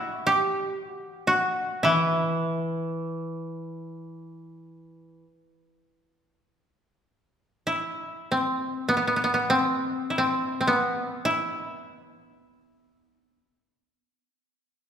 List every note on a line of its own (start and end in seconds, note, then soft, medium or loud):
0.00 1.83 E4 medium
0.00 0.33 F#4 medium
0.27 0.84 G4 medium
0.84 1.27 F#4 medium
1.27 3.38 F#4 medium
1.83 5.23 E3 soft
1.83 5.70 E4 medium
7.67 9.93 E4 medium
8.32 8.95 C4 medium
8.89 8.96 B3 medium
8.97 9.07 B3 soft
9.07 9.16 B3 soft
9.16 9.23 B3 soft
9.24 9.34 B3 medium
9.34 9.56 B3 soft
9.50 10.18 C4 medium
10.10 11.25 E4 soft
10.18 10.60 C4 medium
10.61 10.73 C4 soft
10.67 13.37 B3 medium
11.25 13.03 E4 medium
13.03 13.26 D#4 medium
13.26 13.49 D4 medium
13.49 13.72 C#4 medium
13.72 14.90 C4 medium